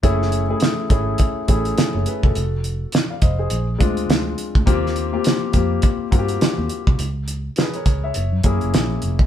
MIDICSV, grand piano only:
0, 0, Header, 1, 2, 480
1, 0, Start_track
1, 0, Tempo, 579710
1, 33, Time_signature, 4, 2, 24, 8
1, 7672, End_track
2, 0, Start_track
2, 0, Title_t, "Grand piano"
2, 0, Program_c, 0, 0
2, 23, Note_on_c, 0, 57, 85
2, 28, Note_on_c, 0, 61, 84
2, 33, Note_on_c, 0, 64, 73
2, 35, Note_on_c, 0, 68, 87
2, 178, Control_c, 0, 64, 127
2, 333, Note_off_c, 0, 57, 0
2, 335, Note_off_c, 0, 61, 0
2, 337, Note_off_c, 0, 64, 0
2, 339, Note_off_c, 0, 68, 0
2, 404, Note_on_c, 0, 57, 59
2, 408, Note_on_c, 0, 61, 60
2, 410, Note_on_c, 0, 64, 60
2, 417, Note_on_c, 0, 68, 74
2, 694, Note_off_c, 0, 57, 0
2, 697, Note_off_c, 0, 61, 0
2, 697, Note_off_c, 0, 64, 0
2, 701, Note_off_c, 0, 68, 0
2, 741, Note_on_c, 0, 57, 70
2, 748, Note_on_c, 0, 61, 65
2, 753, Note_on_c, 0, 64, 60
2, 757, Note_on_c, 0, 68, 72
2, 1154, Note_off_c, 0, 57, 0
2, 1158, Note_off_c, 0, 61, 0
2, 1160, Note_off_c, 0, 64, 0
2, 1162, Note_off_c, 0, 68, 0
2, 1223, Note_on_c, 0, 57, 71
2, 1228, Note_on_c, 0, 64, 57
2, 1229, Note_on_c, 0, 61, 64
2, 1236, Note_on_c, 0, 68, 80
2, 1473, Note_off_c, 0, 68, 0
2, 1609, Note_on_c, 0, 73, 55
2, 1617, Note_on_c, 0, 69, 46
2, 1704, Note_off_c, 0, 73, 0
2, 1709, Note_off_c, 0, 69, 0
2, 1715, Note_on_c, 0, 71, 59
2, 1719, Note_on_c, 0, 68, 49
2, 1845, Note_off_c, 0, 71, 0
2, 1846, Note_off_c, 0, 68, 0
2, 1854, Note_on_c, 0, 69, 56
2, 1859, Note_on_c, 0, 66, 42
2, 1946, Note_off_c, 0, 57, 0
2, 1948, Note_off_c, 0, 61, 0
2, 1948, Note_off_c, 0, 64, 0
2, 1959, Control_c, 0, 64, 0
2, 2079, Note_off_c, 0, 69, 0
2, 2082, Note_off_c, 0, 66, 0
2, 2096, Control_c, 0, 64, 127
2, 2570, Note_on_c, 0, 77, 59
2, 2573, Note_on_c, 0, 74, 46
2, 2664, Note_off_c, 0, 77, 0
2, 2664, Note_on_c, 0, 75, 54
2, 2666, Note_off_c, 0, 74, 0
2, 2670, Note_on_c, 0, 72, 49
2, 2791, Note_off_c, 0, 72, 0
2, 2798, Note_off_c, 0, 75, 0
2, 2804, Note_on_c, 0, 72, 60
2, 2809, Note_on_c, 0, 68, 59
2, 2920, Control_c, 0, 64, 0
2, 3033, Note_off_c, 0, 72, 0
2, 3036, Note_off_c, 0, 68, 0
2, 3080, Control_c, 0, 64, 127
2, 3134, Note_on_c, 0, 56, 77
2, 3139, Note_on_c, 0, 60, 64
2, 3143, Note_on_c, 0, 62, 64
2, 3148, Note_on_c, 0, 65, 76
2, 3751, Note_off_c, 0, 56, 0
2, 3754, Note_off_c, 0, 60, 0
2, 3756, Note_off_c, 0, 62, 0
2, 3758, Note_off_c, 0, 65, 0
2, 3857, Note_on_c, 0, 58, 86
2, 3862, Note_on_c, 0, 60, 86
2, 3868, Note_on_c, 0, 65, 74
2, 3869, Note_on_c, 0, 67, 91
2, 3879, Control_c, 0, 64, 0
2, 4048, Control_c, 0, 64, 127
2, 4167, Note_off_c, 0, 58, 0
2, 4170, Note_off_c, 0, 60, 0
2, 4173, Note_off_c, 0, 65, 0
2, 4173, Note_off_c, 0, 67, 0
2, 4242, Note_on_c, 0, 58, 67
2, 4245, Note_on_c, 0, 60, 60
2, 4249, Note_on_c, 0, 65, 60
2, 4253, Note_on_c, 0, 67, 81
2, 4531, Note_off_c, 0, 58, 0
2, 4533, Note_off_c, 0, 60, 0
2, 4535, Note_off_c, 0, 65, 0
2, 4537, Note_off_c, 0, 67, 0
2, 4575, Note_on_c, 0, 58, 73
2, 4577, Note_on_c, 0, 60, 64
2, 4582, Note_on_c, 0, 65, 60
2, 4586, Note_on_c, 0, 67, 76
2, 4990, Note_off_c, 0, 58, 0
2, 4991, Note_off_c, 0, 60, 0
2, 4993, Note_off_c, 0, 65, 0
2, 4996, Note_off_c, 0, 67, 0
2, 5058, Note_on_c, 0, 58, 73
2, 5062, Note_on_c, 0, 60, 63
2, 5063, Note_on_c, 0, 65, 63
2, 5067, Note_on_c, 0, 66, 62
2, 5122, Note_on_c, 0, 67, 81
2, 5130, Note_off_c, 0, 66, 0
2, 5783, Note_off_c, 0, 58, 0
2, 5785, Note_off_c, 0, 60, 0
2, 5786, Note_off_c, 0, 65, 0
2, 5798, Control_c, 0, 64, 0
2, 5815, Note_off_c, 0, 67, 0
2, 5966, Control_c, 0, 64, 127
2, 6272, Note_on_c, 0, 71, 61
2, 6274, Note_on_c, 0, 68, 50
2, 6403, Note_off_c, 0, 71, 0
2, 6404, Note_off_c, 0, 68, 0
2, 6417, Note_on_c, 0, 73, 62
2, 6422, Note_on_c, 0, 70, 52
2, 6641, Note_off_c, 0, 73, 0
2, 6644, Note_off_c, 0, 70, 0
2, 6656, Note_on_c, 0, 76, 62
2, 6661, Note_on_c, 0, 73, 58
2, 6759, Control_c, 0, 64, 0
2, 6881, Note_off_c, 0, 76, 0
2, 6883, Note_off_c, 0, 73, 0
2, 6897, Control_c, 0, 64, 127
2, 6991, Note_on_c, 0, 58, 73
2, 6996, Note_on_c, 0, 61, 65
2, 6999, Note_on_c, 0, 64, 65
2, 7004, Note_on_c, 0, 68, 78
2, 7602, Note_off_c, 0, 58, 0
2, 7604, Note_off_c, 0, 61, 0
2, 7606, Note_off_c, 0, 64, 0
2, 7608, Note_off_c, 0, 68, 0
2, 7672, End_track
0, 0, End_of_file